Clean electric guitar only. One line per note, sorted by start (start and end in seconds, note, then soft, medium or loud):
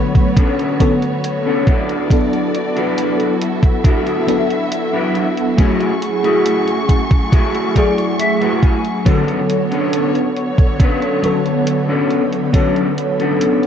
0.36 0.91 B3 medium
0.36 0.91 C#4 medium
0.36 0.91 D4 medium
0.36 0.92 A4 medium
1.45 1.67 B3 medium
1.45 1.67 C#4 medium
1.45 1.65 D4 medium
1.45 1.67 A4 loud
1.66 2.54 D4 medium
1.66 2.54 E4 medium
1.66 2.54 F#4 medium
1.66 2.55 A4 loud
2.76 3.30 D4 medium
2.76 3.30 E4 medium
2.76 3.31 F#4 medium
2.76 3.31 B4 loud
3.84 4.39 D4 medium
3.84 4.39 E4 medium
3.84 4.39 F#4 medium
3.84 4.40 A4 loud
4.93 5.26 D4 medium
4.93 5.26 E4 medium
4.93 5.26 F#4 medium
4.93 5.27 B4 loud
5.58 5.91 A3 loud
5.58 5.91 E4 loud
5.58 5.91 F#4 loud
5.58 5.92 G#4 loud
6.23 6.78 A3 medium
6.23 6.78 E4 medium
6.23 6.78 F#4 medium
6.23 6.79 G#4 medium
7.32 7.87 A3 medium
7.32 7.76 E4 medium
7.32 7.87 F#4 medium
7.32 7.87 G#4 loud
7.76 8.17 D5 medium
8.20 8.60 E5 medium
8.41 8.74 A3 medium
8.41 8.74 E4 medium
8.41 8.74 F#4 medium
8.41 8.74 B4 loud
8.63 9.03 G#5 medium
9.06 9.39 B3 loud
9.06 9.39 C#4 loud
9.06 9.39 D4 loud
9.06 9.39 A4 loud
9.71 10.26 B3 medium
9.71 10.26 C#4 medium
9.71 10.26 D4 medium
9.71 10.27 A4 loud
10.80 11.35 B3 medium
10.80 11.35 C#4 medium
10.80 11.35 D4 medium
10.80 11.35 B4 medium
11.88 12.21 B3 medium
11.88 12.22 C#4 medium
11.88 12.22 D4 medium
11.88 12.22 A4 loud
12.53 12.87 B3 loud
12.53 12.87 C#4 loud
12.53 12.87 D4 loud
12.53 12.87 A4 loud
13.19 13.67 B3 medium
13.19 13.67 C#4 medium
13.19 13.67 D4 medium
13.19 13.67 A4 loud